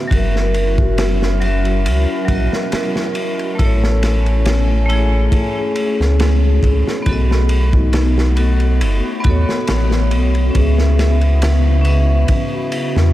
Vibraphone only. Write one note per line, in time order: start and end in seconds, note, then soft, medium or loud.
0.00 0.14 E5 loud
0.08 1.35 F#3 medium
0.08 1.37 F#4 medium
0.14 1.38 A#4 medium
0.14 1.40 E5 medium
1.41 2.23 F#3 medium
1.41 2.24 F#4 medium
1.41 2.25 A#4 medium
1.46 2.26 E5 loud
2.25 3.53 F#3 loud
2.25 3.54 F#4 medium
2.32 3.56 A#4 medium
2.32 3.58 D#5 loud
3.55 4.83 A3 medium
3.55 4.84 E4 medium
3.62 4.86 A4 medium
3.62 4.88 C#5 loud
4.86 7.00 A3 medium
4.86 7.02 E4 medium
4.93 7.04 G#4 medium
4.93 7.05 C#5 medium
7.02 8.30 B3 medium
7.02 8.32 F#4 medium
7.09 8.34 A4 medium
7.09 8.36 D#5 loud
8.36 9.19 B3 medium
8.36 9.20 F#4 medium
8.36 9.21 A4 medium
8.41 9.21 D#5 loud
9.20 10.48 B3 loud
9.20 10.50 F#4 medium
9.27 10.51 A4 medium
9.27 10.53 C#5 loud
10.51 11.78 C#4 medium
10.51 11.80 B4 medium
10.57 11.82 D#5 medium
10.57 11.84 E5 medium
11.81 13.13 C#4 medium
11.81 13.13 B4 medium
11.88 13.13 D#5 medium
11.88 13.13 E5 medium